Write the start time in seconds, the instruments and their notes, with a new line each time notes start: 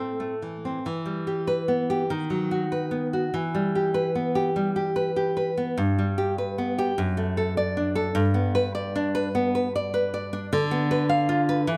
Already playing: nylon-string guitar A2 A3 C4, flute A4
0.20 nylon-string guitar A3
0.42 nylon-string guitar E3
0.65 nylon-string guitar C4
0.86 nylon-string guitar E3
1.06 nylon-string guitar G3
1.27 nylon-string guitar G4
1.47 nylon-string guitar B4
1.68 nylon-string guitar B3
1.90 nylon-string guitar G4
2.10 nylon-string guitar D#3
2.30 nylon-string guitar F#3
2.51 nylon-string guitar F#4
2.72 nylon-string guitar B4
2.91 nylon-string guitar B3
3.13 nylon-string guitar F#4
3.34 nylon-string guitar E3
3.55 nylon-string guitar G3
3.75 nylon-string guitar G4
3.94 nylon-string guitar B4
4.15 nylon-string guitar B3
4.35 nylon-string guitar G4
4.56 nylon-string guitar G3
4.76 nylon-string guitar G4
4.96 nylon-string guitar B4
5.16 nylon-string guitar G4
5.37 nylon-string guitar B4
5.57 nylon-string guitar B3
5.78 nylon-string guitar G2
5.99 nylon-string guitar G3
6.18 nylon-string guitar G4
6.38 nylon-string guitar B4
6.58 nylon-string guitar B3
6.79 nylon-string guitar G4
6.98 nylon-string guitar F#2
7.17 nylon-string guitar A3
7.37 nylon-string guitar A4
7.57 nylon-string guitar D5
7.77 nylon-string guitar D4
7.96 nylon-string guitar A4
8.15 nylon-string guitar G2
8.34 nylon-string guitar B3
8.55 nylon-string guitar B4
8.75 nylon-string guitar D5
8.96 nylon-string guitar D4
9.15 nylon-string guitar B4
9.35 nylon-string guitar B3
9.55 nylon-string guitar B4
9.76 nylon-string guitar D5
9.94 nylon-string guitar B4
10.14 nylon-string guitar D5
10.33 nylon-string guitar D4
10.53 nylon-string guitar D3
10.71 nylon-string guitar B3
10.91 nylon-string guitar B4
11.09 nylon-string guitar F5
11.29 nylon-string guitar F4
11.49 nylon-string guitar B4
11.67 nylon-string guitar E3